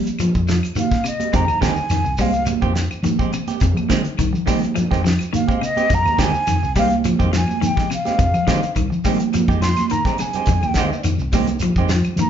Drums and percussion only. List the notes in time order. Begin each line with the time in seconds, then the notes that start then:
0.07 closed hi-hat, shekere
0.19 closed hi-hat, low conga, claves, shekere
0.35 kick, shekere
0.48 snare, closed hi-hat, shekere
0.63 closed hi-hat, claves, shekere
0.75 closed hi-hat, high conga, shekere
0.91 kick, snare, shekere
1.04 closed hi-hat, claves, shekere
1.20 closed hi-hat, high conga, shekere
1.33 kick, closed hi-hat, low conga, shekere
1.48 claves, shekere
1.62 kick, snare, closed hi-hat, high conga, shekere
1.76 shekere
1.90 snare, closed hi-hat, claves, shekere
2.05 shekere
2.17 kick, open hi-hat, high conga, shekere
2.33 closed hi-hat, low conga, shekere
2.46 closed hi-hat, high conga, low conga, claves, shekere
2.62 kick, shekere
2.75 snare, closed hi-hat, shekere
2.91 claves, shekere
3.03 closed hi-hat, high conga, shekere
3.19 kick, shekere
3.33 closed hi-hat, claves, shekere
3.48 closed hi-hat, high conga, shekere
3.60 kick, closed hi-hat, low conga, shekere
3.76 high conga, claves, shekere
3.89 kick, snare, closed hi-hat, high conga, shekere
4.05 closed hi-hat, shekere
4.18 kick, closed hi-hat, claves, shekere
4.35 shekere
4.47 kick, snare, open hi-hat, high conga, shekere
4.63 closed hi-hat, high conga, shekere
4.75 closed hi-hat, low conga, claves, shekere
4.91 kick, snare, shekere
5.05 snare, closed hi-hat, shekere
5.19 closed hi-hat, claves, shekere
5.33 closed hi-hat, high conga, shekere
5.49 kick, shekere
5.61 closed hi-hat, claves, shekere
5.77 closed hi-hat, high conga, shekere
5.90 kick, closed hi-hat, low conga, shekere
6.06 high conga, claves, shekere
6.19 kick, snare, closed hi-hat, high conga, shekere
6.34 shekere
6.47 snare, closed hi-hat, claves, shekere
6.63 shekere
6.75 kick, open hi-hat, high conga, shekere
6.90 closed hi-hat, high conga, shekere
7.04 closed hi-hat, high conga, low conga, claves, shekere
7.20 kick, shekere
7.33 snare, closed hi-hat, shekere
7.48 high conga, claves, shekere
7.62 closed hi-hat, high conga, shekere
7.77 kick, snare, shekere
7.90 closed hi-hat, claves, shekere
8.05 snare, closed hi-hat, high conga, shekere
8.19 kick, closed hi-hat, low conga, shekere
8.34 claves, shekere
8.47 kick, snare, closed hi-hat, high conga, shekere
8.63 closed hi-hat, shekere
8.76 kick, closed hi-hat, claves, shekere
8.92 shekere
9.05 kick, open hi-hat, high conga, shekere
9.20 closed hi-hat, high conga, shekere
9.33 closed hi-hat, high conga, low conga, claves, shekere
9.48 kick, shekere
9.62 snare, closed hi-hat, shekere
9.76 snare, closed hi-hat, high conga, claves, shekere
9.90 closed hi-hat, shekere
10.05 kick, snare, low conga, shekere
10.18 closed hi-hat, low conga, claves, shekere
10.33 closed hi-hat, low conga, shekere
10.46 kick, closed hi-hat, low conga, shekere
10.62 high conga, claves, shekere
10.74 kick, snare, closed hi-hat, high conga, shekere
10.93 shekere
11.04 closed hi-hat, claves, shekere
11.19 shekere
11.32 kick, open hi-hat, high conga, shekere
11.47 closed hi-hat, low conga, shekere
11.60 closed hi-hat, low conga, claves, shekere
11.76 kick, shekere
11.89 snare, closed hi-hat, shekere
12.04 claves, shekere
12.17 closed hi-hat, high conga, shekere